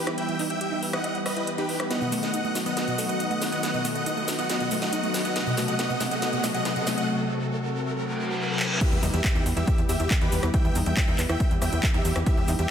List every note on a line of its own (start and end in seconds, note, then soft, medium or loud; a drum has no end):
0.00 riser medium
0.07 0.15 E3 medium
0.07 0.15 G3 medium
0.07 0.15 B3 medium
0.07 0.12 E4 loud
0.07 0.15 G4 medium
0.07 cross-stick medium
0.07 closed hi-hat soft
0.18 0.33 E3 medium
0.18 0.33 G3 medium
0.18 0.33 B3 medium
0.18 0.25 E4 loud
0.18 0.33 G4 medium
0.18 0.41 E5 medium
0.18 0.41 G5 loud
0.18 closed hi-hat medium
0.29 0.32 E3 medium
0.29 closed hi-hat soft
0.39 0.55 E3 medium
0.39 0.55 G3 medium
0.39 0.55 B3 medium
0.39 0.42 D#4 loud
0.39 0.55 G4 medium
0.39 open hi-hat loud
0.50 0.81 E5 medium
0.50 0.81 G5 medium
0.50 closed hi-hat soft
0.61 0.64 G4 medium
0.61 closed hi-hat medium
0.72 0.79 E3 medium
0.72 0.79 G3 medium
0.72 0.79 B3 medium
0.72 0.75 D#4 medium
0.72 0.79 G4 medium
0.83 0.98 E3 medium
0.83 0.98 G3 medium
0.83 0.98 B3 medium
0.83 0.98 G4 medium
0.83 0.88 B4 medium
0.83 open hi-hat medium
0.93 0.98 E4 loud
0.93 1.17 D#5 medium
0.93 1.17 F#5 medium
0.93 cross-stick medium
0.93 closed hi-hat soft
1.04 1.12 E3 medium
1.04 1.12 G3 loud
1.04 1.12 B3 medium
1.04 1.12 G4 medium
1.04 1.12 E5 medium
1.04 closed hi-hat medium
1.15 1.22 E3 medium
1.15 1.22 G3 medium
1.15 1.22 B3 medium
1.15 1.22 G4 medium
1.15 closed hi-hat soft
1.26 1.41 E3 medium
1.26 1.41 G3 medium
1.26 1.41 B3 medium
1.26 1.41 G4 medium
1.26 1.49 B4 medium
1.26 1.49 D#5 medium
1.26 1.33 E5 medium
1.26 cross-stick medium
1.26 open hi-hat loud
1.36 1.40 E4 medium
1.36 closed hi-hat medium
1.47 1.55 E3 medium
1.47 1.55 G3 medium
1.47 1.55 B3 medium
1.47 1.55 G4 medium
1.47 closed hi-hat medium
1.58 1.73 E3 medium
1.58 1.73 G3 medium
1.58 1.73 B3 medium
1.58 1.61 D#4 loud
1.58 1.73 G4 medium
1.58 1.81 G4 medium
1.58 1.81 B4 loud
1.58 closed hi-hat soft
1.69 open hi-hat medium
1.80 1.87 E3 medium
1.80 1.87 G3 medium
1.80 1.87 B3 medium
1.80 1.85 E4 loud
1.80 1.87 G4 medium
1.80 cross-stick medium
1.80 closed hi-hat soft
1.90 2.06 D#3 medium
1.90 2.06 F#3 medium
1.90 2.06 B3 medium
1.90 1.98 B3 medium
1.90 2.06 F#4 medium
1.90 2.14 D#5 medium
1.90 2.14 F#5 medium
1.90 snare soft
1.90 closed hi-hat medium
1.90 shaker soft
2.01 2.04 B2 medium
2.01 shaker soft
2.12 2.27 D#3 medium
2.12 2.27 F#3 medium
2.12 2.15 A3 loud
2.12 2.27 B3 medium
2.12 2.27 F#4 medium
2.12 open hi-hat loud
2.12 shaker medium
2.23 2.54 D#5 medium
2.23 2.54 F#5 medium
2.23 snare soft
2.23 closed hi-hat soft
2.23 shaker soft
2.34 2.37 D#4 medium
2.34 closed hi-hat medium
2.34 shaker soft
2.44 2.52 D#3 medium
2.44 2.52 F#3 medium
2.44 2.47 A3 medium
2.44 2.52 B3 medium
2.44 2.52 F#4 medium
2.44 shaker soft
2.55 2.70 D#3 medium
2.55 2.70 F#3 loud
2.55 2.70 B3 medium
2.55 2.70 F#4 medium
2.55 2.60 F#4 medium
2.55 snare medium
2.55 open hi-hat medium
2.55 shaker medium
2.66 2.71 B3 loud
2.66 2.75 D#5 medium
2.66 2.75 F#5 medium
2.66 closed hi-hat soft
2.66 shaker soft
2.77 2.84 D#3 medium
2.77 2.84 F#3 medium
2.77 2.84 B3 medium
2.77 2.84 F#4 medium
2.77 3.00 D#5 medium
2.77 3.00 F#5 loud
2.77 snare medium
2.77 closed hi-hat medium
2.77 shaker soft
2.88 2.91 B2 medium
2.88 2.95 D#3 medium
2.88 2.95 F#3 medium
2.88 2.95 B3 medium
2.88 2.95 F#4 medium
2.88 closed hi-hat soft
2.88 shaker soft
2.98 3.13 D#3 medium
2.98 3.13 F#3 medium
2.98 3.01 A3 medium
2.98 3.13 B3 medium
2.98 3.13 F#4 loud
2.98 open hi-hat loud
2.98 shaker medium
3.09 3.40 D#5 medium
3.09 3.40 F#5 medium
3.09 closed hi-hat medium
3.09 shaker soft
3.20 3.27 D#3 medium
3.20 3.27 F#3 medium
3.20 3.27 B3 medium
3.20 3.23 D#4 medium
3.20 3.27 F#4 medium
3.20 closed hi-hat medium
3.20 shaker soft
3.31 3.46 D#3 medium
3.31 3.46 F#3 medium
3.31 3.34 A3 medium
3.31 3.46 B3 medium
3.31 3.46 F#4 medium
3.31 closed hi-hat soft
3.31 shaker soft
3.41 3.47 F#4 medium
3.41 snare medium
3.41 open hi-hat medium
3.41 shaker medium
3.52 3.60 D#3 medium
3.52 3.60 F#3 loud
3.52 3.57 B3 medium
3.52 3.60 B3 medium
3.52 3.60 F#4 medium
3.52 3.61 D#5 medium
3.52 3.61 F#5 medium
3.52 closed hi-hat soft
3.52 shaker soft
3.63 3.78 D#3 medium
3.63 3.78 F#3 medium
3.63 3.71 B3 medium
3.63 3.78 B3 medium
3.63 3.78 F#4 medium
3.63 3.86 D#5 medium
3.63 3.86 F#5 medium
3.63 snare medium
3.63 closed hi-hat medium
3.63 shaker soft
3.74 3.77 B2 medium
3.74 shaker soft
3.85 4.00 D#3 medium
3.85 4.00 F#3 medium
3.85 3.88 A3 loud
3.85 4.00 B3 medium
3.85 4.00 F#4 medium
3.85 open hi-hat loud
3.85 shaker medium
3.95 4.27 D#5 medium
3.95 4.27 F#5 medium
3.95 closed hi-hat medium
3.95 shaker soft
4.06 4.09 D#4 medium
4.06 closed hi-hat medium
4.06 shaker soft
4.17 4.25 D#3 medium
4.17 4.25 F#3 medium
4.17 4.20 A3 medium
4.17 4.25 B3 medium
4.17 4.25 F#4 medium
4.17 shaker soft
4.28 4.43 D#3 medium
4.28 4.43 F#3 medium
4.28 4.43 B3 medium
4.28 4.43 F#4 medium
4.28 4.33 F#4 medium
4.28 snare medium
4.28 open hi-hat medium
4.28 shaker medium
4.39 4.44 B3 loud
4.39 4.48 D#5 medium
4.39 4.48 F#5 medium
4.39 closed hi-hat medium
4.39 shaker soft
4.49 4.57 D#3 medium
4.49 4.57 F#3 medium
4.49 4.57 B3 loud
4.49 4.57 B3 medium
4.49 4.57 F#4 medium
4.49 4.73 D#5 medium
4.49 4.73 F#5 medium
4.49 snare medium
4.49 closed hi-hat medium
4.49 shaker soft
4.60 4.63 B2 medium
4.60 4.68 D#3 loud
4.60 4.68 F#3 medium
4.60 4.68 B3 medium
4.60 4.68 F#4 medium
4.60 closed hi-hat soft
4.60 shaker soft
4.71 4.86 D#3 medium
4.71 4.86 F#3 medium
4.71 4.74 A3 loud
4.71 4.86 B3 medium
4.71 4.86 F#4 medium
4.71 open hi-hat loud
4.71 shaker medium
4.82 5.13 D#5 medium
4.82 5.13 F#5 loud
4.82 snare medium
4.82 closed hi-hat medium
4.82 shaker soft
4.93 5.00 D#3 medium
4.93 5.00 F#3 medium
4.93 5.00 B3 medium
4.93 4.96 D#4 medium
4.93 5.00 F#4 medium
4.93 closed hi-hat medium
4.93 shaker soft
5.03 5.19 D#3 medium
5.03 5.19 F#3 medium
5.03 5.07 A3 medium
5.03 5.19 B3 medium
5.03 5.19 F#4 medium
5.03 closed hi-hat soft
5.03 shaker soft
5.14 5.19 F#4 medium
5.14 snare medium
5.14 open hi-hat medium
5.14 shaker medium
5.25 5.33 D#3 medium
5.25 5.33 F#3 medium
5.25 5.30 B3 loud
5.25 5.33 B3 medium
5.25 5.33 F#4 medium
5.25 5.34 D#5 medium
5.25 5.34 F#5 medium
5.25 closed hi-hat medium
5.25 shaker soft
5.36 5.51 C3 medium
5.36 5.51 F#3 medium
5.36 5.51 A3 medium
5.36 5.43 B3 medium
5.36 5.51 F#4 loud
5.36 5.59 D#5 medium
5.36 5.59 F#5 loud
5.36 snare medium
5.36 closed hi-hat medium
5.36 shaker soft
5.47 5.50 B2 medium
5.47 shaker soft
5.57 5.72 C3 medium
5.57 5.72 F#3 medium
5.57 5.72 A3 medium
5.57 5.60 A3 loud
5.57 5.72 F#4 medium
5.57 snare medium
5.57 open hi-hat loud
5.57 shaker medium
5.68 5.77 D#5 medium
5.68 5.77 F#5 medium
5.68 closed hi-hat medium
5.68 shaker soft
5.79 5.87 B3 loud
5.79 6.02 D#5 medium
5.79 6.02 F#5 loud
5.79 snare medium
5.79 closed hi-hat medium
5.79 shaker soft
5.90 5.93 B2 medium
5.90 5.97 C3 medium
5.90 5.97 F#3 medium
5.90 5.97 A3 medium
5.90 5.97 F#4 medium
5.90 shaker soft
6.00 6.16 C3 medium
6.00 6.16 F#3 loud
6.00 6.16 A3 loud
6.00 6.04 A3 loud
6.00 6.16 F#4 medium
6.00 snare medium
6.00 open hi-hat medium
6.00 shaker medium
6.11 6.20 D#5 medium
6.11 6.20 F#5 medium
6.11 closed hi-hat medium
6.11 shaker soft
6.22 6.30 C3 loud
6.22 6.30 F#3 medium
6.22 6.30 A3 medium
6.22 6.30 B3 loud
6.22 6.30 F#4 medium
6.22 6.45 D#5 medium
6.22 6.45 F#5 loud
6.22 snare medium
6.22 closed hi-hat medium
6.22 shaker soft
6.33 6.36 B2 medium
6.33 6.40 C3 loud
6.33 6.40 F#3 medium
6.33 6.40 A3 medium
6.33 6.40 F#4 medium
6.33 closed hi-hat soft
6.33 shaker soft
6.44 6.59 C3 loud
6.44 6.59 F#3 medium
6.44 6.47 A3 loud
6.44 6.59 A3 medium
6.44 6.59 F#4 loud
6.44 snare medium
6.44 open hi-hat loud
6.44 shaker medium
6.54 6.64 D#5 medium
6.54 6.64 F#5 loud
6.54 closed hi-hat medium
6.54 shaker soft
6.65 6.73 C3 medium
6.65 6.73 F#3 medium
6.65 6.73 A3 medium
6.65 6.73 B3 loud
6.65 6.73 F#4 medium
6.65 6.89 D#5 medium
6.65 6.89 F#5 loud
6.65 snare medium
6.65 closed hi-hat medium
6.65 shaker soft
6.76 6.79 B2 medium
6.76 6.91 C3 medium
6.76 6.91 F#3 medium
6.76 6.91 A3 medium
6.76 6.91 F#4 medium
6.76 closed hi-hat soft
6.76 shaker soft
6.87 6.90 A3 loud
6.87 snare medium
6.87 open hi-hat medium
6.87 shaker medium
6.98 7.05 C3 medium
6.98 7.05 F#3 medium
6.98 7.05 A3 medium
6.98 7.05 F#4 medium
6.98 7.07 D#5 medium
6.98 7.07 F#5 medium
6.98 closed hi-hat medium
6.98 shaker soft
7.09 7.24 C3 medium
7.09 7.24 F#3 medium
7.09 7.24 A3 loud
7.09 7.24 F#4 loud
7.30 7.45 C3 medium
7.30 7.45 F#3 medium
7.30 7.45 A3 medium
7.30 7.45 F#4 medium
7.62 7.70 C3 medium
7.62 7.70 F#3 medium
7.62 7.70 A3 medium
7.62 7.70 F#4 medium
7.73 7.88 C3 loud
7.73 7.88 F#3 medium
7.73 7.88 A3 medium
7.73 7.88 F#4 medium
7.95 8.02 C3 medium
7.95 8.02 F#3 medium
7.95 8.02 A3 loud
7.95 8.02 F#4 medium
7.95 reverse cymbal medium
8.05 8.13 C3 medium
8.05 8.13 F#3 medium
8.05 8.13 A3 medium
8.05 8.13 F#4 medium
8.16 8.31 C3 loud
8.16 8.31 F#3 medium
8.16 8.31 A3 medium
8.16 8.31 F#4 loud
8.38 8.46 C3 medium
8.38 8.46 F#3 medium
8.38 8.46 A3 medium
8.38 8.46 F#4 medium
8.49 8.64 C3 medium
8.49 8.64 F#3 medium
8.49 8.64 A3 medium
8.49 8.64 F#4 medium
8.60 clap medium
8.70 8.78 C3 medium
8.70 8.78 F#3 medium
8.70 8.78 A3 medium
8.70 8.78 F#4 loud
8.81 8.96 E3 medium
8.81 8.96 G3 medium
8.81 8.96 B3 medium
8.81 8.89 E4 loud
8.81 8.96 G4 medium
8.81 9.04 G4 medium
8.81 9.04 E5 loud
8.81 kick loud
8.81 closed hi-hat medium
8.81 crash loud
8.81 shaker soft
8.92 9.00 E2 medium
8.92 8.95 E3 medium
8.92 shaker soft
9.03 9.10 E2 loud
9.03 9.18 E3 medium
9.03 9.18 G3 medium
9.03 9.18 B3 medium
9.03 9.06 D#4 loud
9.03 9.18 G4 medium
9.03 open hi-hat loud
9.03 shaker medium
9.13 9.21 E2 loud
9.13 9.44 G4 medium
9.13 9.45 E5 loud
9.13 closed hi-hat medium
9.13 shaker soft
9.24 9.27 G4 medium
9.24 kick loud
9.24 clap loud
9.24 closed hi-hat medium
9.24 shaker soft
9.35 9.43 E2 medium
9.35 9.43 E3 medium
9.35 9.43 G3 medium
9.35 9.43 B3 medium
9.35 9.38 D#4 medium
9.35 9.43 G4 medium
9.35 shaker soft
9.46 9.53 E2 loud
9.46 9.61 E3 medium
9.46 9.61 G3 medium
9.46 9.61 B3 medium
9.46 9.61 G4 medium
9.46 9.51 B4 medium
9.46 open hi-hat medium
9.46 shaker medium
9.56 9.64 E2 medium
9.56 9.62 E4 loud
9.56 9.80 G4 medium
9.56 9.80 E5 medium
9.56 closed hi-hat medium
9.56 shaker soft
9.67 9.75 E3 medium
9.67 9.75 G3 medium
9.67 9.75 B3 medium
9.67 9.75 G4 loud
9.67 9.75 E5 medium
9.67 kick loud
9.67 closed hi-hat medium
9.67 shaker soft
9.78 9.86 E2 medium
9.78 9.86 E3 medium
9.78 9.86 G3 medium
9.78 9.86 B3 medium
9.78 9.86 G4 medium
9.78 closed hi-hat soft
9.78 shaker soft
9.89 9.97 E2 loud
9.89 10.04 E3 medium
9.89 10.04 G3 medium
9.89 10.04 B3 medium
9.89 10.12 G4 medium
9.89 10.04 G4 medium
9.89 9.97 E5 medium
9.89 10.12 E5 loud
9.89 open hi-hat loud
9.89 shaker medium
10.00 10.07 E2 medium
10.00 10.03 E4 medium
10.00 closed hi-hat medium
10.00 shaker soft
10.11 10.18 E3 medium
10.11 10.18 G3 medium
10.11 10.18 B3 medium
10.11 10.18 G4 medium
10.11 kick loud
10.11 clap loud
10.11 closed hi-hat medium
10.11 shaker soft
10.21 10.29 E2 medium
10.21 10.37 E3 medium
10.21 10.37 G3 medium
10.21 10.37 B3 medium
10.21 10.25 D#4 loud
10.21 10.45 G4 medium
10.21 10.37 G4 medium
10.21 10.45 B4 loud
10.21 closed hi-hat soft
10.21 shaker soft
10.32 10.40 E2 loud
10.32 open hi-hat loud
10.32 shaker medium
10.43 10.51 E2 loud
10.43 10.51 E3 medium
10.43 10.51 G3 medium
10.43 10.51 B3 medium
10.43 10.48 E4 loud
10.43 10.51 G4 medium
10.43 cross-stick medium
10.43 closed hi-hat medium
10.43 shaker soft
10.54 10.69 E3 medium
10.54 10.69 G3 medium
10.54 10.69 B3 medium
10.54 10.61 E4 medium
10.54 10.69 G4 medium
10.54 10.77 E5 medium
10.54 10.77 G5 loud
10.54 kick loud
10.54 closed hi-hat medium
10.54 shaker soft
10.65 10.72 E2 medium
10.65 10.68 E3 medium
10.65 shaker soft
10.75 10.83 E2 loud
10.75 10.90 E3 medium
10.75 10.90 G3 medium
10.75 10.90 B3 medium
10.75 10.78 D#4 loud
10.75 10.90 G4 medium
10.75 open hi-hat loud
10.75 shaker medium
10.86 10.94 E2 medium
10.86 11.17 E5 medium
10.86 11.17 G5 medium
10.86 closed hi-hat medium
10.86 shaker soft
10.97 11.00 G4 medium
10.97 kick loud
10.97 clap loud
10.97 closed hi-hat medium
10.97 shaker soft
11.08 11.15 E2 medium
11.08 11.15 E3 medium
11.08 11.15 G3 medium
11.08 11.15 B3 medium
11.08 11.11 D#4 medium
11.08 11.15 G4 medium
11.08 shaker soft
11.18 11.26 E2 medium
11.18 11.34 E3 medium
11.18 11.34 G3 medium
11.18 11.34 B3 medium
11.18 11.34 G4 medium
11.18 11.24 B4 medium
11.18 clap medium
11.18 open hi-hat loud
11.18 shaker medium
11.29 11.37 E2 medium
11.29 11.34 E4 loud
11.29 11.53 E5 medium
11.29 11.53 G5 medium
11.29 cross-stick medium
11.29 closed hi-hat medium
11.29 shaker soft
11.40 11.48 E3 medium
11.40 11.48 G3 medium
11.40 11.48 B3 medium
11.40 11.48 G4 medium
11.40 11.48 E5 medium
11.40 kick loud
11.40 closed hi-hat medium
11.40 shaker soft
11.51 11.59 E2 medium
11.51 11.59 E3 medium
11.51 11.58 G3 medium
11.51 11.58 B3 medium
11.51 11.59 G4 medium
11.51 closed hi-hat soft
11.51 shaker soft
11.62 11.69 E2 loud
11.62 11.77 E3 medium
11.62 11.77 G3 medium
11.62 11.77 B3 loud
11.62 11.77 G4 medium
11.62 11.69 E5 medium
11.62 11.85 E5 medium
11.62 11.85 G5 loud
11.62 cross-stick medium
11.62 open hi-hat loud
11.62 shaker medium
11.72 11.80 E2 medium
11.72 11.75 E4 medium
11.72 closed hi-hat medium
11.72 shaker soft
11.83 11.91 E3 medium
11.83 11.91 G3 medium
11.83 11.91 B3 medium
11.83 11.91 G4 medium
11.83 kick loud
11.83 clap loud
11.83 closed hi-hat medium
11.83 shaker soft
11.94 12.02 E2 medium
11.94 12.09 E3 medium
11.94 12.09 G3 medium
11.94 12.09 B3 medium
11.94 11.97 D#4 loud
11.94 12.09 G4 medium
11.94 12.17 G4 medium
11.94 12.17 E5 loud
11.94 closed hi-hat soft
11.94 shaker soft
12.05 12.13 E2 loud
12.05 open hi-hat medium
12.05 shaker medium
12.15 12.23 E2 loud
12.15 12.23 E3 medium
12.15 12.23 G3 medium
12.15 12.23 B3 medium
12.15 12.21 E4 loud
12.15 12.23 G4 loud
12.15 cross-stick medium
12.15 closed hi-hat medium
12.15 shaker soft
12.26 12.42 E3 medium
12.26 12.42 G3 medium
12.26 12.42 B3 medium
12.26 12.34 E4 loud
12.26 12.42 G4 medium
12.26 12.50 G4 medium
12.26 12.50 E5 loud
12.26 kick loud
12.26 closed hi-hat medium
12.26 shaker soft
12.37 12.45 E2 medium
12.37 12.40 E3 medium
12.37 shaker soft
12.48 12.56 E2 loud
12.48 12.63 E3 medium
12.48 12.63 G3 medium
12.48 12.63 B3 medium
12.48 12.51 D#4 loud
12.48 12.63 G4 medium
12.48 open hi-hat loud
12.48 shaker medium
12.59 12.66 E2 medium
12.59 12.71 G4 medium
12.59 12.71 E5 loud
12.59 closed hi-hat medium
12.59 shaker soft